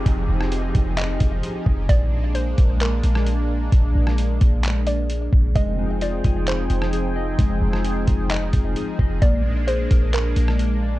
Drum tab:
HH |x---x-x-x-x-x---|x---x-x-x-x-x---|x---x-x-x-x-x---|x---x-x-x-x-x---|
CP |--------x-------|--------x-------|--------x-------|--------x-------|
SD |---r------------|-----------r----|---r------------|-----------r----|
BD |o-----o---o---o-|o-----o---------|o-----o-------o-|o-----o---------|

HH |x---x-x-x-x-x---|x---x-x-x-x-x---|
CP |--------x-------|--------x-------|
SD |---r------------|-----------r----|
BD |o-----o---o---o-|o-----o---------|